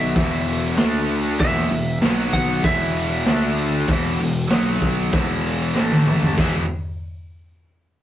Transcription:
Already playing: B1 B2 F#3 B3 E5
0.15 E1 E2 B2 E3, kick, open hi-hat
0.47 open hi-hat
0.77 D2 D3 A3 D4, snare, open hi-hat
1.09 open hi-hat
1.39 E1 E2 B2 E3 E5, kick, open hi-hat
1.56 snare
1.70 E1 E2 B2, open hi-hat
2.01 B1 B2 F#3 B3, snare, open hi-hat
2.33 F#5, kick, open hi-hat
2.64 E1 E2 B2 E3 E5, kick, open hi-hat
2.96 open hi-hat
3.26 D2 D3 A3 D4, snare, open hi-hat
3.57 open hi-hat
3.88 E1 E2 B2 E3, kick, open hi-hat
4.19 E1 E2 B2, open hi-hat
4.50 B1 B2 F#3 B3, snare, open hi-hat
4.82 kick, open hi-hat
5.12 E1 E2 B2 E3, kick, open hi-hat
5.45 open hi-hat
5.74 A1 A2 E3 A3, snare
5.92 high tom
6.07 mid tom
6.23 floor tom
6.37 E1 E2 B2 E3 G#3 B3 E4 G#4, kick, crash

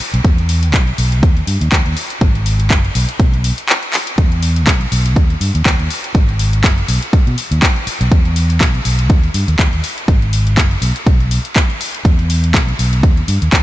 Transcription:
0.00 muted fingered electric bass stroke, open hi-hat
0.14 B1, closed hi-hat
0.25 kick, closed hi-hat
0.38 closed hi-hat
0.49 open hi-hat
0.63 closed hi-hat
0.74 B1, kick, clap, closed hi-hat
0.87 closed hi-hat
0.98 B1, open hi-hat
1.12 closed hi-hat
1.23 D#2, kick, closed hi-hat
1.37 closed hi-hat
1.47 G2, open hi-hat
1.61 D#2, closed hi-hat
1.72 kick, clap, closed hi-hat
1.86 D#2, closed hi-hat
1.97 open hi-hat
2.10 closed hi-hat
2.21 G#1, kick, closed hi-hat
2.35 closed hi-hat
2.46 open hi-hat
2.60 closed hi-hat
2.70 F#1, kick, clap, closed hi-hat
2.85 closed hi-hat
2.95 B1, open hi-hat
3.09 closed hi-hat
3.20 B1, kick, closed hi-hat
3.34 closed hi-hat
3.44 open hi-hat
3.58 closed hi-hat
3.69 clap, closed hi-hat
3.83 closed hi-hat
3.93 clap, open hi-hat
4.07 closed hi-hat
4.18 E2, kick, closed hi-hat
4.32 closed hi-hat
4.43 open hi-hat
4.56 closed hi-hat
4.67 B1, kick, clap, closed hi-hat
4.81 closed hi-hat
4.92 B1, open hi-hat
5.06 closed hi-hat
5.16 D#2, kick, closed hi-hat
5.30 closed hi-hat
5.41 G2, open hi-hat
5.55 D#2, closed hi-hat
5.66 kick, clap, closed hi-hat
5.79 D#2, closed hi-hat
5.90 open hi-hat
6.04 closed hi-hat
6.15 G#1, kick, closed hi-hat
6.29 closed hi-hat
6.39 open hi-hat
6.53 closed hi-hat
6.64 F#1, kick, clap, closed hi-hat
6.78 closed hi-hat
6.88 B1, open hi-hat
7.02 closed hi-hat
7.13 kick, closed hi-hat
7.27 B2, closed hi-hat
7.38 open hi-hat
7.51 D#2, closed hi-hat
7.62 kick, clap, closed hi-hat
7.76 closed hi-hat
7.87 muted fingered electric bass stroke, open hi-hat
8.01 B1, closed hi-hat
8.12 kick, closed hi-hat
8.25 closed hi-hat
8.36 open hi-hat
8.50 closed hi-hat
8.61 B1, kick, clap, closed hi-hat
8.74 closed hi-hat
8.85 B1, open hi-hat
8.99 closed hi-hat
9.10 D#2, kick, closed hi-hat
9.24 closed hi-hat
9.34 G2, open hi-hat
9.48 D#2, closed hi-hat
9.59 kick, clap, closed hi-hat
9.72 D#2, closed hi-hat
9.84 open hi-hat
9.98 closed hi-hat
10.08 G#1, kick, closed hi-hat
10.22 closed hi-hat
10.33 open hi-hat
10.47 closed hi-hat
10.57 F#1, kick, clap, closed hi-hat
10.71 closed hi-hat
10.82 B1, open hi-hat
10.96 closed hi-hat
11.07 B1, kick, closed hi-hat
11.20 closed hi-hat
11.31 open hi-hat
11.45 closed hi-hat
11.56 kick, clap, closed hi-hat
11.70 closed hi-hat
11.81 open hi-hat
11.95 closed hi-hat
12.05 E2, kick, closed hi-hat
12.19 closed hi-hat
12.30 open hi-hat
12.44 closed hi-hat
12.54 B1, kick, clap, closed hi-hat
12.68 closed hi-hat
12.79 B1, open hi-hat
12.93 closed hi-hat
13.03 D#2, kick, closed hi-hat
13.17 closed hi-hat
13.28 G2, open hi-hat
13.42 D#2, closed hi-hat
13.53 kick, clap, closed hi-hat

